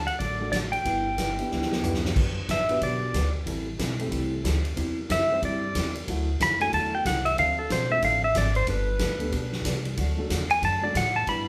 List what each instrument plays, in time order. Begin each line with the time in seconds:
0.07 pedal steel guitar F#5, ride
0.19 upright bass A1, hollow-body jazz guitar D3 F#3 A3 D4 F#4, pedal steel guitar D5, kick, ride
0.39 upright piano A3 D4 F#4 A4
0.52 hollow-body jazz guitar D3 F#3 A3 D4 F#4, pedal steel guitar D5, kick, snare, hi-hat pedal, ride
0.72 pedal steel guitar G5, ride
0.85 upright bass G1, hollow-body jazz guitar G3 B3 E4 G4, kick, ride
1.18 hollow-body jazz guitar G3 B3 E4 G4, kick, snare, hi-hat pedal, ride
1.38 upright piano B3 D4 E4 G4, ride
1.51 upright bass D2, hollow-body jazz guitar G3 B3 E4 G4, snare
1.62 snare
1.71 upright piano B3 D4 E4 G4, snare
1.83 hollow-body jazz guitar G3 B3 E4 G4, floor tom, hi-hat pedal
1.94 snare
2.05 snare
2.16 upright bass G1, hollow-body jazz guitar D3 F#3 B3 D4 G4, kick, crash
2.48 upright bass A1, hollow-body jazz guitar D3 F#3 B3 D4 G4, pedal steel guitar E5, kick, snare, hi-hat pedal, ride
2.68 upright piano B3 D4 F#4 G4 B4, ride
2.81 upright bass B1, hollow-body jazz guitar D3 F#3 B3 D4 G4, pedal steel guitar D5, kick, ride
3.14 upright bass D2, hollow-body jazz guitar D3 F#3 B3 D4 G4, kick, snare, hi-hat pedal, ride
3.46 upright bass A1, hollow-body jazz guitar E3 G3 C4 E4 A4, kick, ride
3.79 upright bass B1, hollow-body jazz guitar E3 G3 C4 E4 A4, kick, snare, hi-hat pedal, ride
3.99 upright piano A3 C4 E4 G4 A4, ride
4.11 upright bass C2, hollow-body jazz guitar E3 G3 C4 E4 A4, kick, ride
4.44 upright bass D2, hollow-body jazz guitar E3 G3 C4 E4 A4, kick, snare, hi-hat pedal, ride
4.65 ride
4.76 upright bass E2, hollow-body jazz guitar C3 G3 C4 E4 G4, kick, ride
5.09 upright bass F#2, hollow-body jazz guitar C3 G3 C4 E4 G4, pedal steel guitar E5, kick, snare, hi-hat pedal, ride
5.30 upright piano G3 C4 E4 G4 C5
5.41 upright bass G2, hollow-body jazz guitar C3 G3 C4 E4 G4, pedal steel guitar D5, kick, ride
5.75 upright bass E2, hollow-body jazz guitar C3 G3 C4 E4 G4, kick, snare, hi-hat pedal, ride
5.95 ride
6.08 upright bass D2, hollow-body jazz guitar D3 F#3 A3 E4 F#4, kick, ride
6.40 upright bass F#2, hollow-body jazz guitar D3 F#3 A3 E4 F#4, pedal steel guitar B5, kick, snare, hi-hat pedal, ride
6.60 upright piano A3 D4 E4 F#4 A4, pedal steel guitar G#5, ride
6.72 upright bass E2, hollow-body jazz guitar D3 F#3 A3 E4 F#4, pedal steel guitar A5, kick, ride
6.95 pedal steel guitar G5
7.05 upright bass C2, hollow-body jazz guitar D3 F#3 A3 E4 F#4, pedal steel guitar F#5, kick, snare, hi-hat pedal, ride
7.25 pedal steel guitar E5, ride
7.38 upright bass D2, hollow-body jazz guitar D3 F3 C4 D4 A4, pedal steel guitar F5, kick, ride
7.59 pedal steel guitar A4
7.70 upright bass B1, hollow-body jazz guitar D3 F3 C4 D4 A4, pedal steel guitar C5, kick, snare, hi-hat pedal, ride
7.90 upright piano A3 C4 D4 F4 A4, pedal steel guitar E5
8.02 upright bass A1, hollow-body jazz guitar D3 F3 C4 D4 A4, pedal steel guitar F5, kick, ride
8.24 pedal steel guitar E5
8.35 upright bass G#1, hollow-body jazz guitar D3 F3 C4 D4 A4, pedal steel guitar D5, kick, snare, hi-hat pedal, ride
8.55 pedal steel guitar C5, ride
8.67 upright bass G1, hollow-body jazz guitar G3 B3 D4 A4, pedal steel guitar B4, kick, ride
8.99 upright bass D2, hollow-body jazz guitar G3 B3 D4 A4, kick, snare, hi-hat pedal, ride
9.20 upright piano A3 B3 D4 G4 A4, ride
9.32 upright bass B1, hollow-body jazz guitar G3 B3 D4 A4, kick, ride
9.52 snare
9.65 upright bass C2, hollow-body jazz guitar G3 B3 D4 A4, kick, snare, hi-hat pedal, ride
9.85 ride
9.97 upright bass D2, hollow-body jazz guitar D3 F#3 A3 D4 F#4, kick, ride
10.17 upright piano F#3 A3 D4 F#4 A4
10.30 upright bass E2, hollow-body jazz guitar D3 F#3 A3 D4 F#4, kick, snare, hi-hat pedal, ride
10.50 pedal steel guitar G#5, ride
10.62 upright bass F#2, hollow-body jazz guitar D3 F#3 A3 D4 F#4, pedal steel guitar A5, kick, ride
10.82 upright piano F#3 A3 D4 F#4 A4, pedal steel guitar D5
10.94 upright bass A2, hollow-body jazz guitar D3 F#3 A3 D4 F#4, pedal steel guitar F#5, kick, snare, hi-hat pedal, ride
11.16 pedal steel guitar A5
11.27 upright bass G2, hollow-body jazz guitar G3 B3 E4 G4, pedal steel guitar B5, kick, ride